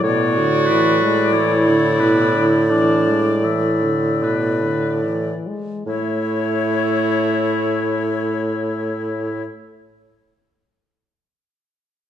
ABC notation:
X:1
M:4/4
L:1/16
Q:1/4=38
K:A
V:1 name="Flute"
d12- d2 z2 | c16 |]
V:2 name="Oboe"
c2 B2 c2 B2 d2 e2 B2 z2 | E16 |]
V:3 name="Clarinet"
F4 E4 D2 z6 | A,16 |]
V:4 name="French horn" clef=bass
B,, D, E, G, E, D, B,, D, E, G, E, D, B,, D, E, G, | A,16 |]
V:5 name="Bassoon" clef=bass
A,,12- A,,2 z2 | A,,16 |]